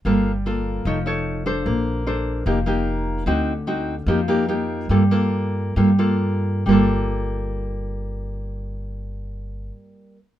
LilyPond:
<<
  \new Staff \with { instrumentName = "Nylon-string guitar" } { \time 4/4 \key g \minor \tempo 4 = 143 << { <bes f' a'>8 r8 <bes f' a'>4 <ees' a' des''>8 <ees' a' des''>4 <d' a' c''>8~ | <d' a' c''>4 <d' a' c''>4 <bes ees' g'>8 <bes ees' g'>4. | <c' ees' fis'>8 r8 <c' ees' fis'>8 r8 <bes ees' g'>8 <bes ees' g'>8 <bes ees' g'>4 | <bes f' a'>8 <bes f' a'>4. <bes f' a'>8 <bes f' a'>4. |
<g bes f' a'>1~ | <g bes f' a'>1 | } \\ { g2 f2 | bes2 f2 | d2 f2 | g2 g2 |
r1 | r1 | } >> }
  \new Staff \with { instrumentName = "Upright bass" } { \clef bass \time 4/4 \key g \minor g,,2 f,,2 | bes,,2 f,,2 | d,2 f,2 | g,2 g,2 |
g,,1~ | g,,1 | }
>>